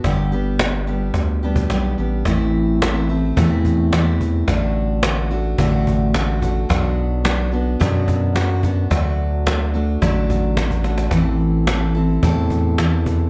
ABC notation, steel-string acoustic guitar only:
X:1
M:4/4
L:1/8
Q:1/4=108
K:Ador
V:1 name="Steel-string acoustic guitar"
[G,,D,G,B,DG] [G,B,DG]2 [G,B,DG]2 [G,B,DG] [G,B,DG] [G,B,DG] | [A,,E,A,CE]2 [E,A,CE] [A,CE] [A,,E,A,CE]2 [E,A,CE]2 | [A,,D,A,DF]2 [D,A,DF] [A,DF] [A,,D,A,DF]2 [D,A,DF] [A,DF] | [B,,F,B,DF]2 [F,B,DF] [B,DF] [B,,F,B,DF]2 [F,B,DF] [B,DF] |
[D,F,A,DF]2 [F,A,DF] [A,DF] [D,F,A,DF]2 [F,A,DF] [A,DF] | [A,,E,CEA]2 [E,CEA] [CEA] [A,,E,CEA]2 [E,CEA]2 |]